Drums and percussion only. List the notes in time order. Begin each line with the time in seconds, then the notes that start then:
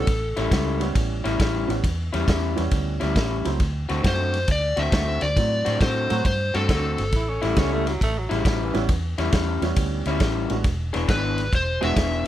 0.07 kick, snare, ride
0.37 snare, ride
0.51 kick, snare, ride
0.81 snare, ride
0.95 kick, snare, ride
1.25 snare, ride
1.40 kick, snare, ride
1.70 snare, ride
1.84 kick, snare, ride
2.14 snare, ride
2.28 kick, snare, ride
2.58 snare, ride
2.71 kick, snare, ride
3.01 snare, ride
3.16 kick, snare, ride
3.45 snare, ride
3.60 kick, snare, ride
3.89 snare, ride
4.04 kick, snare, ride
4.34 snare, ride
4.48 kick, snare, ride
4.77 snare, ride
4.92 kick, snare, ride
5.21 snare, ride
5.37 kick, snare, ride
5.66 snare, ride
5.81 kick, snare, ride
6.10 snare, ride
6.25 kick, snare, ride
6.54 snare, ride
6.69 kick, snare, ride
6.98 snare, ride
7.12 kick, snare, ride
7.42 snare, ride
7.56 kick, snare, ride
7.87 snare, ride
8.01 kick, snare, ride
8.31 snare, ride
8.45 kick, snare, ride
8.74 snare, ride
8.89 kick, snare, ride
9.18 snare, ride
9.32 kick, snare, ride
9.62 snare, ride
9.76 kick, snare, ride
10.06 snare, ride
10.20 kick, snare, ride
10.50 snare, ride
10.64 kick, snare, ride
10.94 snare, ride
11.09 kick, snare, ride
11.38 snare, ride
11.53 kick, snare, ride
11.82 snare, ride
11.96 kick, snare, ride